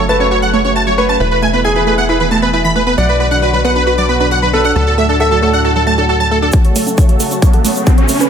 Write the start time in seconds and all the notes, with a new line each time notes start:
Already playing: F#1 C#3 F#3 A3 F#4
0.09 A3 B4 A5 A6
0.20 C#4 C#5 C#6
0.31 F#4 C#5 C#6
0.42 F#3 F#5 F#6
0.53 A3 C#5 C#6
0.65 C#4 C#5 C#6
0.76 F#4 A5 A6
0.87 F#3 C#5 C#6
0.98 A3 B4 C#5 C#6
1.09 C#4 A5 A6
1.20 E1 B2 E3 E4 B4 B5
1.31 B4 B5
1.42 A3 G#5 G#6
1.53 B3 B4 B5
1.65 E4 G#4 G#5 G#6
1.76 E3 B4 B5
1.87 A3 B4 B5
1.98 B3 F#5 F#6
2.09 E4 B4 B5
2.20 E3 B4 B5
2.31 A3 A5 A6
2.42 B3 B4 B5
2.53 E4 B4 B5
2.64 E3 B5 B6
2.76 A3 B4 B5
2.87 B3 B4 B5
2.98 B1 B2 D3 F#3 D4 F#4 D5 F#5 F#6
3.09 B4 B5
3.20 B3 B4 B5
3.31 D4 F#5 F#6
3.42 F#4 B4 B5
3.53 F#3 B4 B5
3.65 B3 B4 F#5 F#6
3.76 D4 B4 B5
3.87 F#4 B4 B5
3.98 F#3 D5 D6
4.09 B3 B4 B5
4.20 D4 B4 B5
4.31 F#4 F#5 F#6
4.42 F#3 B4 B5
4.53 B3 A4 B4 B5
4.65 D4 F#5 F#6
4.76 D2 A2 F#3 F#4 A4 A5
4.87 A4 A5
4.98 A3 E5 E6
5.09 D4 A4 A5
5.20 F#4 A4 E5 E6
5.31 F#3 A4 A5
5.42 A3 A4 A5
5.53 D4 F#5 F#6
5.65 F#4 A4 A5
5.76 F#3 A4 A5
5.87 A3 A5 A6
5.98 D4 A4 A5
6.09 F#4 A4 A5
6.20 F#3 A5 A6
6.31 A3 A4 A5
6.42 D4 A4 A5
6.52 C#3 F#3 A3 F#4 A4 F#5 A5, kick, closed hi-hat, riser, shaker
6.65 C#5 C#6, closed hi-hat
6.76 A3 C#5 C#6, open hi-hat, shaker
6.87 C#4 F#5 A5, closed hi-hat, shaker
6.98 F#4 C#5 C#6, kick, closed hi-hat, shaker
7.09 F#3 C#5 C#6, closed hi-hat
7.20 A3 F#5 A5 A6, open hi-hat, shaker
7.31 C#4 C#5 C#6, closed hi-hat, shaker
7.42 F#4 C#5 C#6, kick, closed hi-hat, shaker
7.53 F#3 A4 F#5 F#6, closed hi-hat
7.64 A3 C#5 C#6, open hi-hat, shaker
7.76 C#5 C#6, closed hi-hat, shaker
7.87 F#4 F#5 A5 A6, kick, closed hi-hat, shaker
7.98 F#3 C#5 C#6, closed hi-hat
8.09 A3 C#5 C#6, open hi-hat, shaker
8.20 C#4 B4 G#5 G#6, closed hi-hat, shaker